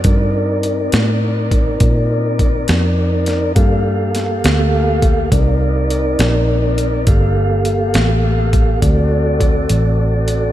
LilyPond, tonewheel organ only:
\new Staff \with { instrumentName = "Tonewheel organ" } { \time 12/8 \key g \minor \tempo 4. = 68 <c' ees' bes' d''>1. | <bes g' a' f''>2. <c' ees' bes' d''>2. | <bes g' a' f''>2. <c' fis' a' d''>2. | }